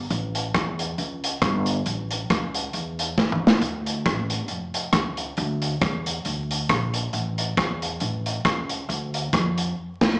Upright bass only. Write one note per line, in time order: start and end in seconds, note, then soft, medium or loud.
0.10 0.48 A1 loud
0.54 0.92 E2 loud
0.98 1.36 C#2 medium
1.42 1.80 G1 loud
1.86 2.23 A1 loud
2.30 2.67 C#2 loud
2.74 3.11 E2 medium
3.18 3.55 C#2 medium
3.61 4.07 D2 loud
4.05 4.49 A1 loud
4.49 4.87 F1 medium
4.93 5.31 C#2 medium
5.37 5.75 D2 loud
5.81 6.19 E2 loud
6.26 6.63 D2 medium
6.69 7.07 A#1 medium
7.13 7.51 A1 loud
7.57 7.95 E2 loud
8.01 8.39 A1 medium
8.45 8.82 C#2 loud
8.89 9.26 D2 loud
9.33 9.70 F2 loud
10.01 10.15 D2 loud